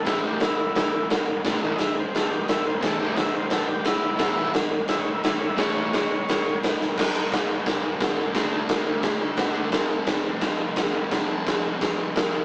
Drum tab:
CC |x-x-x-x-|x-x-x-x-|x-x-x-x-|x-x-x-x-|
SD |o-o-o-o-|o-o-o-o-|o-o-o-o-|o-o-o-o-|
BD |o-------|o-------|o-------|o-------|

CC |x-x-x-x-|x-x-x-x-|x-x-x-x-|x-x-x-x-|
SD |o-o-o-oo|o-o-o-o-|o-o-o-o-|o-o-o-o-|
BD |o-------|o-o-o-o-|o-o-o-o-|o-o-o-o-|

CC |x-x-x-x-|
SD |o-o-o-o-|
BD |o-o-o-o-|